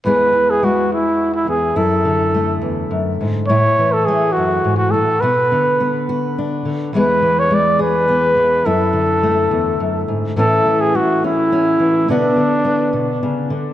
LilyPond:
<<
  \new Staff \with { instrumentName = "Trumpet" } { \time 6/8 \key e \mixolydian \tempo 4. = 70 b'8. gis'16 fis'8 e'8. e'16 gis'8 | a'4. r4. | cis''8. a'16 gis'8 fis'8. fis'16 a'8 | b'4. r4. |
b'8. cis''16 d''8 b'4. | a'2~ a'8 r8 | a'8. gis'16 fis'8 e'4. | d'2 r4 | }
  \new Staff \with { instrumentName = "Steel-string acoustic guitar" } { \clef bass \time 6/8 \key e \mixolydian << { <e gis b gis'>4 gis2 | e'4 a2 | e'4 a2 | fis'4 b8 fis'8 d'4 |
<e gis b gis'>4 gis8 gis'8 b4 | e'4 a2 | <e a cis' e'>4 a8 cis'8 cis'4 | <d b d' fis'>4 b2 | } \\ { e,8 e2 e,8 | fis,8 d4 e,8 fis,8 gis,8 | a,8 e4 fis,8 gis,8 a,8 | b,8 d2 d8 |
e,8 e2 e8 | fis,8 d4 e,8 fis,8 gis,8 | a,8 e2 e8 | b,8 d4 b,8 cis8 d8 | } >> }
>>